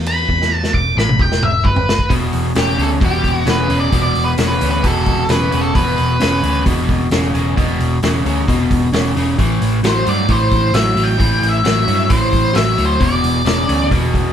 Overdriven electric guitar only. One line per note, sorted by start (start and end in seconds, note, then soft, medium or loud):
2.10 2.51 E2 medium
2.10 2.51 B2 medium
2.55 2.76 E2 medium
2.55 2.76 C#3 medium
2.77 2.99 E2 medium
2.77 2.99 C#3 medium
3.00 3.42 E2 medium
3.00 3.42 B2 medium
3.46 3.67 E2 medium
3.46 3.67 C#3 medium
3.68 3.90 E2 medium
3.68 3.90 C#3 medium
3.92 4.33 E2 medium
3.92 4.33 B2 medium
4.37 4.58 E2 medium
4.37 4.58 C#3 medium
4.61 4.81 E2 medium
4.61 4.82 C#3 medium
4.82 5.24 E2 medium
4.82 5.25 B2 medium
5.29 5.50 E2 medium
5.29 5.50 C#3 medium
5.51 5.72 E2 medium
5.51 5.72 C#3 medium
5.74 6.15 E2 medium
5.74 6.16 B2 medium
6.20 6.41 E2 medium
6.20 6.41 C#3 medium
6.43 6.63 E2 medium
6.43 6.64 C#3 medium
6.65 7.06 E2 medium
6.65 7.07 B2 medium
7.11 7.32 E2 medium
7.11 7.32 C#3 medium
7.33 7.54 E2 medium
7.33 7.54 C#3 medium
7.56 7.97 E2 medium
7.56 7.97 B2 medium
8.03 8.23 E2 medium
8.03 8.23 C#3 medium
8.25 8.45 E2 medium
8.25 8.45 C#3 medium
8.47 8.88 E2 medium
8.47 8.88 B2 medium
8.92 9.13 E2 medium
8.92 9.13 C#3 medium
9.16 9.36 E2 medium
9.16 9.36 C#3 medium
9.38 9.79 A2 medium
9.38 9.79 E3 medium
9.83 10.04 A2 medium
9.83 10.04 F#3 medium
10.06 10.26 A2 medium
10.06 10.26 F#3 medium
10.28 10.69 A2 medium
10.28 10.69 E3 medium
10.74 10.94 A2 medium
10.74 10.95 F#3 medium
10.96 11.17 A2 medium
10.96 11.17 F#3 medium
11.18 11.59 A2 medium
11.18 11.60 E3 medium
11.63 11.84 A2 medium
11.63 11.85 F#3 medium
11.86 12.07 A2 medium
11.86 12.07 F#3 medium
12.09 12.50 A2 medium
12.09 12.50 E3 medium
12.54 12.75 A2 medium
12.54 12.75 F#3 medium
12.77 12.97 A2 medium
12.77 12.98 F#3 medium
13.00 13.41 E2 medium
13.00 13.41 B2 medium
13.45 13.65 E2 medium
13.45 13.65 C#3 medium
13.68 13.88 E2 medium
13.68 13.88 C#3 medium
13.91 14.31 E2 medium
13.91 14.32 B2 medium